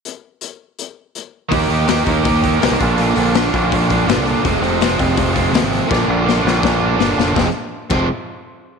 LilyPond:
<<
  \new Staff \with { instrumentName = "Overdriven electric guitar" } { \time 4/4 \key f \dorian \tempo 4 = 164 r1 | <ees bes ees' g'>8 <bes ees' g'>8 <ees bes ees' g'>8 <ees bes ees' g'>8 <ees bes ees' g'>8 <bes ees' g'>8 <ees bes ees' g'>8 <bes, d bes d' f'>8 | <bes, d bes d' f'>8 <bes d' f'>8 <d bes d' f'>8 <bes, d bes d' f'>8 <d bes d' f'>8 <bes d' f'>8 <bes, d bes d' f'>8 <bes d' f'>8 | <f, c f aes c' f'>8 <f aes c' f'>8 <f aes c' f'>8 <f, c f aes c' f'>8 <f aes c' f'>8 <f aes c' f'>8 <f, c f aes c' f'>8 <f aes c' f'>8 |
<bes, d bes d' f'>8 <bes d' f'>8 <d bes d' f'>8 <bes, d bes d' f'>8 <d bes d' f'>8 <bes d' f'>8 <bes, d bes d' f'>8 <bes d' f'>8 | <f, c f aes c' f'>8 r4 <f, c f aes c' f'>8 r2 | }
  \new Staff \with { instrumentName = "Fingered electric bass" } { \clef bass \time 4/4 \key f \dorian r1 | ees,8 ees,4 ees,4. c,16 c,16 bes,,8~ | bes,,8 bes,,4 bes,,4. g,,16 c,8 r16 | f,,8 f,,4 f,,4. d,16 aes,,8 r16 |
bes,,8 bes,,4 bes,,4. g,,8 f,,8 | f,,16 r4 r16 f,,8 r2 | }
  \new DrumStaff \with { instrumentName = "Drums" } \drummode { \time 4/4 hh4 hh4 hh4 hh4 | <hho bd>8 hho8 <hho sn>8 <hho bd>8 <hho bd>8 <hho bd>8 <hho sn>8 <hho bd>8 | hho8 hho8 <hho sn>8 <hho bd>8 <hho bd>8 <hho bd>8 <hho sn>8 hho8 | <hho bd>8 hho8 <hho sn>8 <hho bd>8 <hho bd>8 <hho bd>8 <hho sn>8 hho8 |
<bd sn>4 sn8 sn8 <bd sn>4 sn8 sn8 | <bd sn>4 r8 <cymc bd>8 r4 r4 | }
>>